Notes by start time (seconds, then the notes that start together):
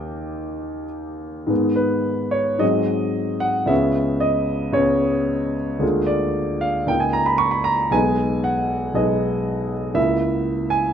Already playing: D#2 D#3 A#3 G4 D#5 G5
1.47 G#2 D#3 G#3 B3
1.76 B4
2.31 C#5
2.58 G#2 F#3 G#3 C4 D#5
3.40 F#5
3.66 C#2 G#3 B3 C#4 E5
4.20 D#5
4.73 C#2 G#3 B3 C#4 C#5
5.79 D2 G#3 A#3 F4
6.07 D5
6.61 F5
6.87 C#2 A#3 D#4 G5
7.00 G#5
7.13 A#5
7.26 B5
7.38 C#6
7.51 B5
7.64 A#5
7.91 B1 G#3 B3 D#4 G#5
8.44 F#5
8.94 B1 G#3 B3 D#4 D#5
9.94 C#2 A#3 E4 E5
10.70 G#5